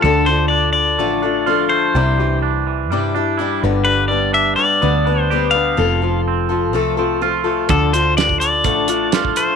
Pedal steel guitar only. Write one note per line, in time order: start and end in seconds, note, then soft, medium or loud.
0.02 0.27 A4 medium
0.26 0.48 C5 medium
0.48 0.71 D5 medium
0.73 1.69 D5 medium
1.69 2.38 C5 medium
3.85 4.08 B4 medium
4.08 4.32 D5 medium
4.34 4.55 E5 medium
4.56 5.22 D5 medium
5.22 5.49 C5 medium
5.51 6.20 F5 medium
7.70 7.92 A4 medium
7.93 8.17 C5 medium
8.17 8.39 D5 medium
8.40 9.33 D5 loud
9.37 9.56 C5 medium